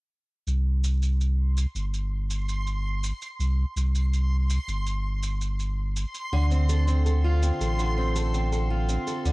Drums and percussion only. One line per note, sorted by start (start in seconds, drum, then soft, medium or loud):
0.48 shaker soft
0.84 shaker medium
1.02 shaker soft
1.21 shaker soft
1.57 shaker medium
1.76 shaker soft
1.94 shaker soft
2.30 shaker medium
2.49 shaker soft
2.67 shaker soft
3.04 shaker medium
3.22 shaker soft
3.40 shaker soft
3.77 shaker medium
3.95 shaker soft
4.13 shaker soft
4.50 shaker medium
4.68 shaker soft
4.87 shaker soft
5.23 shaker medium
5.41 shaker soft
5.60 shaker soft
5.96 shaker medium
6.15 shaker soft
6.51 shaker soft
6.69 shaker medium
6.88 shaker soft
7.06 shaker soft
7.43 shaker medium
7.61 shaker soft
7.79 shaker soft
8.16 shaker medium
8.34 shaker soft
8.52 shaker soft
8.89 shaker medium
9.07 shaker soft
9.26 shaker soft